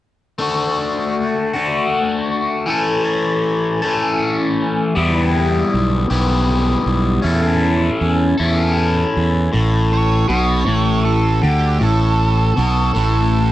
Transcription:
0.38 overdriven electric guitar A3 D4 F#4
1.53 overdriven electric guitar A3 D4 F#4
2.66 overdriven electric guitar E3 A3 C#4 A4
3.82 overdriven electric guitar E3 A3 C#4 A4
4.95 fingered electric bass E2, overdriven electric guitar G3 B3 E4 G4
5.74 fingered electric bass B1
6.10 fingered electric bass B1, overdriven electric guitar G3 B3 E4 G4
6.86 fingered electric bass B1
7.22 fingered electric bass E2, overdriven electric guitar C#4 E4 A4
8.01 fingered electric bass E2
8.38 fingered electric bass E2, overdriven electric guitar C#4 E4 A4
9.17 fingered electric bass E2
9.53 fingered electric bass A1, overdriven electric guitar A2
9.93 lead electric guitar C#5
10.28 fingered electric bass B1, overdriven electric guitar B2, lead electric guitar C#5
10.66 fingered electric bass A1, overdriven electric guitar A2
11.05 lead electric guitar A4
11.42 fingered electric bass D2, overdriven electric guitar D3, lead electric guitar G4
11.80 fingered electric bass A1, overdriven electric guitar A2, lead electric guitar A4
12.57 fingered electric bass B1, overdriven electric guitar B2
12.94 fingered electric bass A1, overdriven electric guitar A2

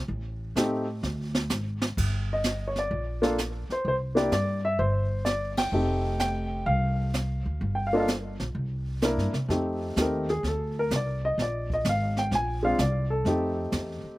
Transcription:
0.08 upright bass A1, brush sweep
0.56 upright bass A2, upright piano A3 C4 D#4 G4, snare, hi-hat pedal
1.03 upright bass D2, snare
1.35 snare
1.50 upright bass G#1, snare, hi-hat pedal
1.82 snare
1.97 upright bass G1, brush sweep, kick, crash
2.33 upright piano D#5
2.44 snare, hi-hat pedal
2.68 upright piano C#5
2.76 upright piano D5, snare
2.91 upright bass A#1, brush sweep
3.22 upright piano A#3 D4 F4 A4, snare
3.38 snare, hi-hat pedal
3.69 upright piano C5, muted upright bass stroke, snare
3.85 upright bass C2, upright piano C5, brush sweep
4.15 upright piano A#3 D4 E4 G4 D5, snare
4.31 upright bass G2, upright piano D5, snare, hi-hat pedal
4.65 upright piano E5
4.79 upright bass G1, upright piano C5, brush sweep
5.25 upright piano D5, snare, hi-hat pedal
5.57 upright piano G5, snare, ride
5.72 upright bass F1, upright piano A3 C4 D#4 G4, brush sweep
6.19 upright piano G5, snare, hi-hat pedal
6.66 upright bass C2, upright piano F5, brush sweep
7.14 snare, hi-hat pedal
7.46 upright bass D2
7.61 upright bass G1, brush sweep
7.75 upright piano G5
7.87 upright piano F5
7.93 upright piano A#3 D4 F4 A4 D#5
8.00 upright piano F5
8.08 snare, hi-hat pedal
8.40 upright bass A#1, snare
8.55 upright bass C2, brush sweep
9.02 upright piano A#3 D4 E4 A#4, snare, hi-hat pedal
9.17 upright bass G2, snare
9.33 upright bass C3, snare
9.48 upright bass F2, upright piano A3 C4 D#4 G4, brush sweep, snare
9.96 upright bass D#2, upright piano A3 C4 D#4 G4, snare, hi-hat pedal
10.01 upright piano A#4
10.29 upright piano G#4, snare
10.43 upright bass D2, brush sweep, snare
10.48 upright piano A4
10.79 upright piano A#4
10.91 upright bass C2, snare, hi-hat pedal
10.96 upright piano D5
11.25 upright piano D#5
11.38 upright bass A#1, brush sweep, snare
11.42 upright piano D5
11.70 upright piano D#5, kick
11.85 upright bass G#1, snare, hi-hat pedal
11.89 upright piano F5
12.17 upright piano G5, snare
12.31 upright bass A#1, upright piano G#5, brush sweep, snare
12.63 upright piano G#3 C4 D4 F4 F5
12.78 upright bass C2, upright piano D5, snare, hi-hat pedal
13.10 upright piano A4
13.25 upright bass F2, upright piano A3 C4 D#4 G4, brush sweep, snare
13.72 upright bass E2, snare, hi-hat pedal
14.04 muted upright bass stroke

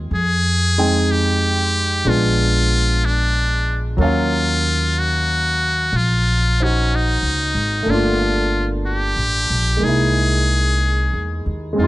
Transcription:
Already playing: grand piano G#3 C4 C#4 F4
0.11 upright bass F2
0.15 muted trumpet G#4
0.78 grand piano G#3 C4 D#4 G5
1.11 muted trumpet G4
2.05 upright bass A#1, grand piano G#3 B3 D4 F4
2.09 muted trumpet F4
3.05 muted trumpet D4
3.97 upright bass D#2, grand piano F#3 A#3 C#4
4.02 muted trumpet F4, grand piano F5
4.99 muted trumpet F#4
5.92 upright bass A#1, muted trumpet F4
6.60 muted trumpet C#4, grand piano D#4 F#4 C5
6.95 muted trumpet D#4
7.23 upright bass C#2
7.55 upright bass G#1
7.83 upright bass G1, grand piano A3 A#3
7.90 grand piano D4 F4, muted trumpet F4
8.86 muted trumpet G4
9.16 upright bass A1
9.50 upright bass A#1
9.77 grand piano G#3 A#3
9.83 upright bass C2, grand piano D#4, muted trumpet G#4
9.88 grand piano E4
11.13 upright bass E2
11.46 upright bass D#2
11.73 grand piano G#3 C4
11.78 upright bass F2, grand piano D#4, muted trumpet F4
11.84 grand piano F4

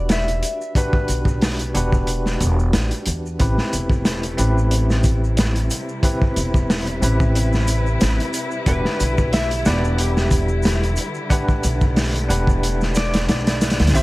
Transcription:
Already playing: upright bass E1, tine electric piano D4 F#4 G4 B4, electric slide guitar D5
0.09 electric slide guitar E5, snare, closed hi-hat, maracas
0.28 closed hi-hat
0.43 closed hi-hat, maracas
0.61 maracas
0.75 tine electric piano D4 F#4 G4 B4, electric slide guitar B4, kick, closed hi-hat, maracas
0.93 kick
1.08 upright bass B1, closed hi-hat, maracas
1.25 kick, maracas
1.41 snare, open hi-hat, maracas
1.59 closed hi-hat
1.74 upright bass E1, tine electric piano D4 F#4 G4 B4, closed hi-hat, maracas
1.92 kick, maracas
2.07 closed hi-hat, maracas
2.26 snare, maracas
2.40 upright bass E1, closed hi-hat, maracas
2.59 maracas
2.73 upright bass A1, snare, closed hi-hat, maracas
2.91 closed hi-hat
3.06 upright bass E2, closed hi-hat, maracas
3.26 maracas
3.39 upright bass A1, string section C3 G3 A3 E4, tine electric piano C4 E4 G4 B4, kick, closed hi-hat, maracas
3.58 snare
3.73 upright bass E1, closed hi-hat, maracas
3.90 kick, maracas
4.05 snare, closed hi-hat, maracas
4.23 closed hi-hat
4.37 upright bass A1, tine electric piano C4 E4 G4 B4, closed hi-hat, maracas
4.58 maracas
4.71 closed hi-hat, maracas
4.90 snare, maracas
5.04 kick, closed hi-hat, maracas
5.24 maracas
5.37 snare, closed hi-hat, maracas
5.56 closed hi-hat
5.70 closed hi-hat, maracas
5.89 maracas
6.03 tine electric piano C4 E4 G4 B4, string section B4, kick, closed hi-hat, maracas
6.22 kick
6.36 upright bass E1, closed hi-hat, maracas
6.54 kick, maracas
6.70 snare, open hi-hat, maracas
6.87 closed hi-hat
7.02 upright bass A1, tine electric piano C4 E4 G4 B4, closed hi-hat, maracas
7.20 kick, maracas
7.35 closed hi-hat, maracas
7.53 snare, maracas
7.67 closed hi-hat, maracas
7.86 maracas
8.01 upright bass A1, snare, closed hi-hat, maracas
8.20 closed hi-hat
8.33 closed hi-hat, maracas
8.51 maracas
8.66 upright bass E1, string section D3, tine electric piano D4 F#4 G4 B4, electric slide guitar B4, kick, closed hi-hat, maracas
8.85 snare
9.00 upright bass B1, closed hi-hat, maracas
9.18 kick, maracas
9.33 electric slide guitar E5, snare, closed hi-hat, maracas
9.51 closed hi-hat
9.65 upright bass E1, tine electric piano D4 G4 B4 F#5, electric slide guitar D5, snare, closed hi-hat, maracas
9.84 maracas
9.98 electric slide guitar G4, closed hi-hat, maracas
10.17 snare, maracas
10.31 kick, closed hi-hat, maracas
10.48 maracas
10.63 snare, closed hi-hat, maracas
10.83 closed hi-hat
10.96 closed hi-hat, maracas
11.14 maracas
11.30 string section A3, tine electric piano D4 G4 B4 F#5, kick, closed hi-hat, maracas
11.48 kick, maracas
11.63 upright bass B1, closed hi-hat, maracas
11.81 kick, maracas
11.96 snare, open hi-hat, maracas
12.16 closed hi-hat
12.28 upright bass E1, tine electric piano D4 G4 B4 F#5, closed hi-hat, maracas
12.47 kick, maracas
12.63 closed hi-hat, maracas
12.81 snare, maracas
12.95 electric slide guitar D5, snare, closed hi-hat, maracas
13.13 snare, closed hi-hat, maracas
13.29 upright bass B1, electric slide guitar D5, snare, closed hi-hat, maracas
13.47 snare, closed hi-hat
13.61 snare, closed hi-hat, maracas
13.70 snare, closed hi-hat
13.80 upright bass D2, snare, closed hi-hat, maracas
13.87 snare, closed hi-hat
13.94 upright bass A1, string section C3 G3 A3 E4, tine electric piano C4 E4 G4 C5, electric slide guitar E5, kick, closed hi-hat, maracas

